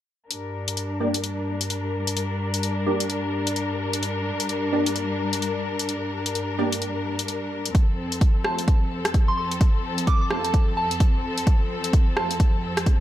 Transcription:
0.31 G2 G3 D4 A#4, closed hi-hat
0.68 closed hi-hat
0.77 closed hi-hat
1.00 A#3 D4 G4 D5
1.14 closed hi-hat
1.24 closed hi-hat
1.61 closed hi-hat
1.70 closed hi-hat
2.07 closed hi-hat
2.17 closed hi-hat
2.54 closed hi-hat
2.63 closed hi-hat
2.86 A#3 D4 G4 D5
3.00 closed hi-hat
3.10 closed hi-hat
3.47 closed hi-hat
3.56 closed hi-hat
3.93 closed hi-hat
4.03 closed hi-hat
4.40 closed hi-hat
4.49 closed hi-hat
4.72 A#3 D4 G4 D5
4.86 closed hi-hat
4.96 closed hi-hat
5.33 closed hi-hat
5.42 closed hi-hat
5.79 closed hi-hat
5.89 closed hi-hat
6.26 closed hi-hat
6.35 closed hi-hat
6.58 A#3 D4 G4 D5
6.72 closed hi-hat
6.82 closed hi-hat
7.19 closed hi-hat
7.28 closed hi-hat
7.66 closed hi-hat
7.75 F2 F3 C4 A4, kick, closed hi-hat
8.12 closed hi-hat
8.21 kick, closed hi-hat
8.44 A3 C4 F4 C5 A5, cross-stick
8.58 closed hi-hat
8.68 kick, closed hi-hat
9.05 cross-stick, closed hi-hat
9.14 kick, closed hi-hat
9.28 C6
9.38 C6
9.51 closed hi-hat
9.61 kick, closed hi-hat
9.98 closed hi-hat
10.07 D6, kick, closed hi-hat
10.21 D6
10.30 A3 C4 F4 C5 A5, cross-stick
10.45 A5, closed hi-hat
10.54 kick, closed hi-hat
10.77 A5
10.91 closed hi-hat
11.00 kick, closed hi-hat
11.38 closed hi-hat
11.47 kick, closed hi-hat
11.84 closed hi-hat
11.93 kick, closed hi-hat
12.17 A3 C4 F4 C5 A5, cross-stick
12.31 closed hi-hat
12.40 kick, closed hi-hat
12.77 cross-stick, closed hi-hat
12.86 kick, closed hi-hat

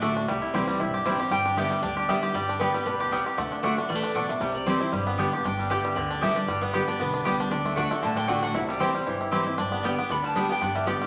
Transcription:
Already playing: A2 A3
0.01 D3 A3 D4 F#4 D5 E5 F#5
0.16 D4
0.28 C2 C3 G3 E5
0.42 E4
0.54 C2 E3 G3 C4 E4 G4 C5 D5 G5
0.68 G3
0.80 B1 G2 E4 E5
0.94 G4
1.05 A1 E3 G3 C4 E4 C5 G5
1.18 C4 E4 G4
1.30 G1 G2 G3 G5
1.46 D4
1.56 D3 G3 B3 G4 D5 E5 G5
1.71 G3
1.82 D2 D3 D4 D5
1.97 G4
2.08 D3 G3 B3 G4 D5 E5 G5
2.23 G4
2.33 G1 G2 G3 D5
2.49 D4
2.59 D3 G3 B3 G4 B4 D5 G5
2.73 G3 B3 G4
2.86 D2 B2 D4 B4
3.00 G4
3.11 C3 G3 B3 G4 D5 G5
3.26 G4
3.37 D2 D3 A3 F#5
3.52 D4
3.63 D3 A3 D4 F#4 D5 E5 F#5
3.77 D4 F#4
3.89 A1 E3 G3 D5
3.95 A3
4.03 D4
4.15 B2 A3 D4 F#4 D5 F#5
4.29 D4 E5
4.40 C2 C3 G3
4.54 D5
4.66 E3 G3 C4 E4 G4 C5 G5
4.80 C4 E4 C5
4.92 G1 G2 G3 B4
5.07 B3
5.18 D3 G3 B3 D4 G4 D5 G5
5.32 B3 G4
5.44 G1 G2 D4 G5
5.59 G3
5.70 D3 G3 B3 G4 D5 E5 G5
5.85 G3
5.96 D2 D3 D5
6.10 D4
6.21 D3 G3 B3 G4 D5 E5 G5
6.36 D4 D5
6.47 G1 G2 G3
6.61 B3 B4
6.73 D3 G3 B3 G4 D5 G5
6.87 B3 D4 G4 D5
6.99 B1 D3 B3 B4
7.14 D4
7.24 C2 D3 G3 B3 G4 D5 G5
7.40 D4
7.51 D2 D3 D4 D5
7.65 A3
7.76 D3 A3 D4 F#4 D5 F#5
7.91 A3 D4 F#4
8.03 A1 A2 D3 A5
8.16 D4 G5
8.28 D3 A3 D4 F#4 D5 F#5
8.43 D4 F#5
8.54 C2 C3 E4 E5
8.69 G3 D5
8.79 E3 G3 C4 E4 G4 C5 G5
8.93 G3 C4 E4
9.06 G1 G2 E3
9.21 E4
9.31 E3 G3 C4 E4 G4 C5 G5
9.46 C4 E4
9.58 G1 G2 D4 D5
9.72 B3
9.83 D3 G3 B3 G4 D5 G5
9.98 B3 G4
10.09 D2 D3 D4 B5
10.24 G3 A5
10.35 D3 G3 B3 D4 G4 D5 G5
10.49 B3 G4 G5
10.61 G1 G2 D4 F#5
10.75 G3 E5
10.85 D3 G3 B3 G4 D5 G5
11.02 G3

